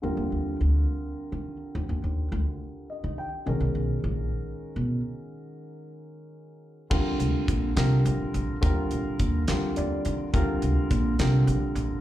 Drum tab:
CC |------|------|------|------|
HH |------|------|------|------|
SD |------|------|------|------|
BD |------|------|------|------|

CC |x-----|------|------|
HH |-xxxxx|xxxxxx|xxxxxx|
SD |---o--|---o--|---o--|
BD |o-o---|o-o---|o-o---|